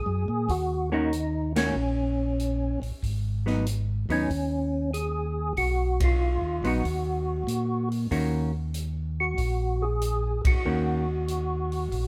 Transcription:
0.00 0.52 G#4 medium
0.06 0.26 F#2 medium
0.28 0.47 A#2 medium
0.49 1.72 D#2 medium
0.49 0.90 F#4 medium
0.49 kick soft
0.49 open hi-hat soft
0.92 1.10 D#3 medium
0.92 1.10 A#3 medium
0.92 1.10 C#4 medium
0.92 1.52 D#4 medium
0.92 1.10 F#4 medium
1.13 closed hi-hat soft
1.56 1.74 D#3 soft
1.56 1.74 A#3 medium
1.56 1.74 C#4 medium
1.56 2.80 C#4 medium
1.56 1.74 F#4 medium
1.56 snare medium
1.56 ride medium
1.75 2.78 A#1 medium
2.39 closed hi-hat soft
2.82 2.92 A#1 soft
2.82 open hi-hat soft
3.03 4.06 G#1 medium
3.03 kick soft
3.03 open hi-hat soft
3.46 3.64 F#3 soft
3.46 3.64 B3 medium
3.46 3.65 D#4 medium
3.46 snare soft
3.66 closed hi-hat medium
4.09 4.28 D#2 medium
4.09 4.28 F#3 medium
4.09 4.28 B3 medium
4.09 4.91 C#4 medium
4.09 4.29 D#4 medium
4.09 open hi-hat soft
4.30 5.53 D#2 medium
4.30 kick soft
4.30 open hi-hat soft
4.93 5.53 G#4 medium
4.93 closed hi-hat soft
5.57 6.38 B1 medium
5.57 6.02 F#4 medium
5.57 kick soft
5.57 open hi-hat soft
6.00 6.67 F4 medium
6.00 kick medium
6.00 ride medium
6.41 6.61 D#2 medium
6.63 6.83 A#1 medium
6.63 6.82 F#3 medium
6.63 6.82 B3 soft
6.63 6.83 D#4 medium
6.63 open hi-hat soft
6.67 7.89 F#4 medium
6.84 7.44 D#2 medium
6.84 kick soft
6.84 open hi-hat soft
7.47 8.07 A#2 medium
7.47 closed hi-hat medium
7.92 open hi-hat soft
8.11 9.34 D#2 medium
8.11 8.50 D#3 soft
8.11 8.50 A#3 medium
8.11 8.51 C#4 medium
8.11 8.51 F#4 medium
8.11 kick soft
8.11 open hi-hat soft
8.74 closed hi-hat medium
9.20 9.85 F#4 medium
9.38 10.41 A#1 medium
9.38 kick soft
9.38 open hi-hat soft
9.82 10.42 G#4 medium
10.01 closed hi-hat soft
10.45 10.55 A#1 soft
10.45 12.07 F#4 medium
10.45 kick medium
10.45 ride medium
10.65 11.89 D#2 medium
10.65 11.05 D#3 soft
10.65 11.05 A#3 soft
10.65 11.05 C#4 soft
10.65 11.05 F#4 medium
11.28 closed hi-hat soft
11.72 open hi-hat soft
11.92 12.07 A#1 medium
11.92 kick soft
11.92 open hi-hat soft

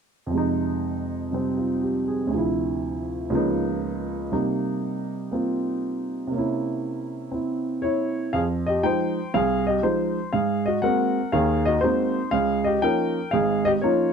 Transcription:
0.26 2.30 F2 medium
0.26 1.30 C3 soft
0.34 2.33 G#3 soft
0.34 2.35 D#4 medium
1.31 2.29 C3 soft
1.31 2.33 G3 soft
1.31 2.33 C4 soft
1.58 1.92 F4 soft
1.83 2.21 G4 soft
2.08 2.42 G#4 soft
2.27 3.30 D2 medium
2.27 3.32 C3 soft
2.34 3.31 F3 soft
2.34 3.35 E4 medium
3.30 4.31 C#2 medium
3.30 4.32 C#3 soft
3.30 4.32 F3 medium
3.30 4.31 A#3 soft
3.34 4.33 B3 soft
3.34 4.31 D#4 medium
4.32 6.26 C3 soft
4.32 6.32 G3 soft
4.32 5.30 A#3 soft
4.32 6.33 D#4 medium
5.31 6.30 A#3 soft
5.31 6.33 C4 soft
5.31 6.33 F4 soft
6.27 8.30 C3 soft
6.27 8.32 A#3 soft
6.34 8.33 C#4 soft
6.34 7.33 E4 medium
7.32 8.32 C4 soft
7.32 7.83 E4 soft
7.82 8.30 E4 medium
7.82 8.29 C#5 medium
8.33 8.76 F2 medium
8.33 8.43 G#4 medium
8.33 8.40 F5 medium
8.66 8.83 G4 medium
8.66 8.83 D#5 medium
8.83 9.18 F3 soft
8.83 9.18 G#3 soft
8.83 9.18 D#4 medium
8.83 9.31 C5 medium
8.83 9.34 G5 medium
9.34 9.77 C2 medium
9.34 9.66 G#4 medium
9.34 9.64 F5 medium
9.67 9.83 G4 medium
9.67 9.83 D#5 medium
9.83 10.18 F3 soft
9.83 10.18 G#3 soft
9.83 10.18 D#4 medium
9.83 10.29 C5 medium
10.33 10.76 G#2 medium
10.33 10.65 G#4 medium
10.33 10.67 F5 medium
10.66 10.82 F#4 medium
10.66 10.81 D#5 medium
10.82 11.18 G#3 medium
10.82 11.18 A#3 soft
10.82 11.18 C4 soft
10.82 11.18 F#4 medium
10.82 11.30 A#4 medium
10.82 11.34 F#5 medium
11.32 11.76 D#2 medium
11.32 11.76 D#3 medium
11.32 11.65 G#4 medium
11.32 11.67 F5 medium
11.65 11.82 F#4 medium
11.65 11.83 D#5 medium
11.81 12.18 G#3 soft
11.81 12.18 A#3 soft
11.81 12.18 C4 soft
11.81 12.29 D#4 medium
11.81 12.18 F#4 medium
11.81 12.33 C5 medium
12.31 12.76 C#2 medium
12.31 12.64 G#4 medium
12.31 12.66 F5 medium
12.64 12.82 G4 medium
12.64 12.80 D#5 medium
12.82 13.17 F3 medium
12.82 13.18 A#3 soft
12.82 13.18 C#4 soft
12.82 13.18 D#4 medium
12.82 13.30 A#4 medium
12.82 13.34 G5 medium
13.31 13.76 G#1 medium
13.31 13.76 G#2 medium
13.31 13.64 G#4 medium
13.31 13.66 F5 medium
13.65 13.72 G4 medium
13.65 13.70 D#5 medium
13.81 14.13 F3 medium
13.81 14.13 A#3 soft
13.81 14.13 C#4 soft
13.81 14.13 D#4 medium
13.81 14.13 F4 medium
13.81 14.13 C#5 medium

